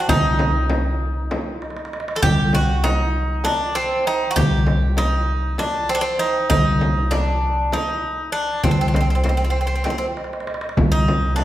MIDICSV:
0, 0, Header, 1, 5, 480
1, 0, Start_track
1, 0, Tempo, 611621
1, 60, Time_signature, 7, 3, 24, 8
1, 8979, End_track
2, 0, Start_track
2, 0, Title_t, "Bouzouki"
2, 0, Program_c, 0, 25
2, 71, Note_on_c, 0, 63, 99
2, 1475, Note_off_c, 0, 63, 0
2, 1696, Note_on_c, 0, 69, 79
2, 1743, Note_off_c, 0, 69, 0
2, 1746, Note_on_c, 0, 67, 107
2, 1991, Note_off_c, 0, 67, 0
2, 1998, Note_on_c, 0, 66, 88
2, 2226, Note_on_c, 0, 63, 83
2, 2236, Note_off_c, 0, 66, 0
2, 2704, Note_on_c, 0, 62, 88
2, 2718, Note_off_c, 0, 63, 0
2, 2944, Note_on_c, 0, 60, 88
2, 2950, Note_off_c, 0, 62, 0
2, 3190, Note_off_c, 0, 60, 0
2, 3195, Note_on_c, 0, 63, 87
2, 3378, Note_off_c, 0, 63, 0
2, 3380, Note_on_c, 0, 66, 78
2, 3418, Note_off_c, 0, 66, 0
2, 3421, Note_on_c, 0, 67, 98
2, 3903, Note_off_c, 0, 67, 0
2, 3906, Note_on_c, 0, 63, 82
2, 4385, Note_off_c, 0, 63, 0
2, 4388, Note_on_c, 0, 62, 79
2, 4625, Note_on_c, 0, 60, 82
2, 4631, Note_off_c, 0, 62, 0
2, 4667, Note_on_c, 0, 62, 75
2, 4679, Note_off_c, 0, 60, 0
2, 4718, Note_on_c, 0, 60, 89
2, 4726, Note_off_c, 0, 62, 0
2, 4858, Note_off_c, 0, 60, 0
2, 4861, Note_on_c, 0, 63, 86
2, 5089, Note_off_c, 0, 63, 0
2, 5098, Note_on_c, 0, 63, 99
2, 5579, Note_on_c, 0, 62, 80
2, 5593, Note_off_c, 0, 63, 0
2, 6069, Note_on_c, 0, 63, 81
2, 6073, Note_off_c, 0, 62, 0
2, 6529, Note_off_c, 0, 63, 0
2, 6532, Note_on_c, 0, 62, 78
2, 6758, Note_off_c, 0, 62, 0
2, 6777, Note_on_c, 0, 60, 76
2, 6826, Note_off_c, 0, 60, 0
2, 6836, Note_on_c, 0, 60, 54
2, 6891, Note_off_c, 0, 60, 0
2, 6915, Note_on_c, 0, 60, 62
2, 6961, Note_off_c, 0, 60, 0
2, 6969, Note_on_c, 0, 60, 45
2, 7017, Note_off_c, 0, 60, 0
2, 7032, Note_on_c, 0, 60, 51
2, 7058, Note_off_c, 0, 60, 0
2, 7068, Note_on_c, 0, 60, 45
2, 7124, Note_off_c, 0, 60, 0
2, 7144, Note_on_c, 0, 60, 50
2, 7172, Note_off_c, 0, 60, 0
2, 7181, Note_on_c, 0, 60, 44
2, 7240, Note_off_c, 0, 60, 0
2, 7248, Note_on_c, 0, 60, 47
2, 7282, Note_off_c, 0, 60, 0
2, 7291, Note_on_c, 0, 60, 41
2, 7346, Note_off_c, 0, 60, 0
2, 7355, Note_on_c, 0, 60, 49
2, 7402, Note_off_c, 0, 60, 0
2, 7412, Note_on_c, 0, 60, 46
2, 7447, Note_off_c, 0, 60, 0
2, 7457, Note_on_c, 0, 60, 52
2, 7524, Note_off_c, 0, 60, 0
2, 7540, Note_on_c, 0, 60, 46
2, 7579, Note_off_c, 0, 60, 0
2, 7588, Note_on_c, 0, 60, 53
2, 7646, Note_off_c, 0, 60, 0
2, 7655, Note_on_c, 0, 60, 45
2, 7712, Note_off_c, 0, 60, 0
2, 7723, Note_on_c, 0, 60, 57
2, 7761, Note_off_c, 0, 60, 0
2, 7771, Note_on_c, 0, 60, 49
2, 7824, Note_off_c, 0, 60, 0
2, 7834, Note_on_c, 0, 60, 55
2, 7890, Note_off_c, 0, 60, 0
2, 8567, Note_on_c, 0, 63, 92
2, 8911, Note_off_c, 0, 63, 0
2, 8914, Note_on_c, 0, 62, 73
2, 8979, Note_off_c, 0, 62, 0
2, 8979, End_track
3, 0, Start_track
3, 0, Title_t, "Upright bass"
3, 0, Program_c, 1, 32
3, 63, Note_on_c, 1, 36, 80
3, 991, Note_off_c, 1, 36, 0
3, 1747, Note_on_c, 1, 36, 88
3, 2672, Note_off_c, 1, 36, 0
3, 3431, Note_on_c, 1, 36, 89
3, 4354, Note_off_c, 1, 36, 0
3, 5109, Note_on_c, 1, 36, 89
3, 6032, Note_off_c, 1, 36, 0
3, 6781, Note_on_c, 1, 36, 83
3, 7708, Note_off_c, 1, 36, 0
3, 8459, Note_on_c, 1, 36, 84
3, 8979, Note_off_c, 1, 36, 0
3, 8979, End_track
4, 0, Start_track
4, 0, Title_t, "Darbuka"
4, 76, Note_on_c, 9, 64, 90
4, 154, Note_off_c, 9, 64, 0
4, 315, Note_on_c, 9, 63, 63
4, 394, Note_off_c, 9, 63, 0
4, 552, Note_on_c, 9, 63, 63
4, 630, Note_off_c, 9, 63, 0
4, 786, Note_on_c, 9, 62, 27
4, 864, Note_off_c, 9, 62, 0
4, 1028, Note_on_c, 9, 63, 63
4, 1106, Note_off_c, 9, 63, 0
4, 1271, Note_on_c, 9, 63, 52
4, 1337, Note_on_c, 9, 62, 61
4, 1350, Note_off_c, 9, 63, 0
4, 1385, Note_on_c, 9, 63, 62
4, 1416, Note_off_c, 9, 62, 0
4, 1452, Note_on_c, 9, 62, 68
4, 1464, Note_off_c, 9, 63, 0
4, 1517, Note_on_c, 9, 63, 72
4, 1531, Note_off_c, 9, 62, 0
4, 1570, Note_on_c, 9, 62, 80
4, 1596, Note_off_c, 9, 63, 0
4, 1634, Note_on_c, 9, 63, 79
4, 1648, Note_off_c, 9, 62, 0
4, 1692, Note_on_c, 9, 62, 85
4, 1712, Note_off_c, 9, 63, 0
4, 1756, Note_on_c, 9, 64, 97
4, 1770, Note_off_c, 9, 62, 0
4, 1834, Note_off_c, 9, 64, 0
4, 1996, Note_on_c, 9, 63, 67
4, 2074, Note_off_c, 9, 63, 0
4, 2240, Note_on_c, 9, 63, 70
4, 2318, Note_off_c, 9, 63, 0
4, 2717, Note_on_c, 9, 63, 61
4, 2796, Note_off_c, 9, 63, 0
4, 2952, Note_on_c, 9, 62, 25
4, 3030, Note_off_c, 9, 62, 0
4, 3425, Note_on_c, 9, 64, 96
4, 3504, Note_off_c, 9, 64, 0
4, 3668, Note_on_c, 9, 63, 64
4, 3746, Note_off_c, 9, 63, 0
4, 3911, Note_on_c, 9, 63, 72
4, 3990, Note_off_c, 9, 63, 0
4, 4388, Note_on_c, 9, 63, 71
4, 4466, Note_off_c, 9, 63, 0
4, 4623, Note_on_c, 9, 62, 23
4, 4702, Note_off_c, 9, 62, 0
4, 5101, Note_on_c, 9, 64, 101
4, 5180, Note_off_c, 9, 64, 0
4, 5585, Note_on_c, 9, 63, 80
4, 5663, Note_off_c, 9, 63, 0
4, 6064, Note_on_c, 9, 63, 66
4, 6142, Note_off_c, 9, 63, 0
4, 6303, Note_on_c, 9, 62, 25
4, 6381, Note_off_c, 9, 62, 0
4, 6782, Note_on_c, 9, 64, 88
4, 6860, Note_off_c, 9, 64, 0
4, 7022, Note_on_c, 9, 63, 66
4, 7100, Note_off_c, 9, 63, 0
4, 7266, Note_on_c, 9, 63, 67
4, 7345, Note_off_c, 9, 63, 0
4, 7732, Note_on_c, 9, 63, 68
4, 7810, Note_off_c, 9, 63, 0
4, 7981, Note_on_c, 9, 63, 54
4, 8039, Note_on_c, 9, 62, 57
4, 8060, Note_off_c, 9, 63, 0
4, 8109, Note_on_c, 9, 63, 60
4, 8117, Note_off_c, 9, 62, 0
4, 8165, Note_on_c, 9, 62, 70
4, 8187, Note_off_c, 9, 63, 0
4, 8219, Note_on_c, 9, 63, 75
4, 8243, Note_off_c, 9, 62, 0
4, 8274, Note_on_c, 9, 62, 80
4, 8298, Note_off_c, 9, 63, 0
4, 8329, Note_on_c, 9, 63, 80
4, 8352, Note_off_c, 9, 62, 0
4, 8390, Note_on_c, 9, 62, 82
4, 8407, Note_off_c, 9, 63, 0
4, 8452, Note_on_c, 9, 64, 85
4, 8469, Note_off_c, 9, 62, 0
4, 8531, Note_off_c, 9, 64, 0
4, 8699, Note_on_c, 9, 63, 63
4, 8777, Note_off_c, 9, 63, 0
4, 8931, Note_on_c, 9, 63, 61
4, 8979, Note_off_c, 9, 63, 0
4, 8979, End_track
5, 0, Start_track
5, 0, Title_t, "Frame drum"
5, 69, Note_on_c, 9, 64, 87
5, 147, Note_off_c, 9, 64, 0
5, 307, Note_on_c, 9, 64, 69
5, 386, Note_off_c, 9, 64, 0
5, 546, Note_on_c, 9, 64, 76
5, 625, Note_off_c, 9, 64, 0
5, 1029, Note_on_c, 9, 64, 72
5, 1108, Note_off_c, 9, 64, 0
5, 1748, Note_on_c, 9, 64, 86
5, 1826, Note_off_c, 9, 64, 0
5, 1985, Note_on_c, 9, 64, 65
5, 2063, Note_off_c, 9, 64, 0
5, 2227, Note_on_c, 9, 64, 70
5, 2306, Note_off_c, 9, 64, 0
5, 2699, Note_on_c, 9, 64, 66
5, 2778, Note_off_c, 9, 64, 0
5, 3425, Note_on_c, 9, 64, 82
5, 3504, Note_off_c, 9, 64, 0
5, 3662, Note_on_c, 9, 64, 66
5, 3740, Note_off_c, 9, 64, 0
5, 3900, Note_on_c, 9, 64, 64
5, 3978, Note_off_c, 9, 64, 0
5, 4381, Note_on_c, 9, 64, 72
5, 4460, Note_off_c, 9, 64, 0
5, 5102, Note_on_c, 9, 64, 84
5, 5180, Note_off_c, 9, 64, 0
5, 5347, Note_on_c, 9, 64, 66
5, 5425, Note_off_c, 9, 64, 0
5, 5586, Note_on_c, 9, 64, 78
5, 5665, Note_off_c, 9, 64, 0
5, 6062, Note_on_c, 9, 64, 68
5, 6140, Note_off_c, 9, 64, 0
5, 6778, Note_on_c, 9, 64, 80
5, 6856, Note_off_c, 9, 64, 0
5, 7015, Note_on_c, 9, 64, 70
5, 7094, Note_off_c, 9, 64, 0
5, 7255, Note_on_c, 9, 64, 70
5, 7334, Note_off_c, 9, 64, 0
5, 7738, Note_on_c, 9, 64, 69
5, 7817, Note_off_c, 9, 64, 0
5, 8455, Note_on_c, 9, 64, 91
5, 8533, Note_off_c, 9, 64, 0
5, 8698, Note_on_c, 9, 64, 66
5, 8776, Note_off_c, 9, 64, 0
5, 8934, Note_on_c, 9, 64, 66
5, 8979, Note_off_c, 9, 64, 0
5, 8979, End_track
0, 0, End_of_file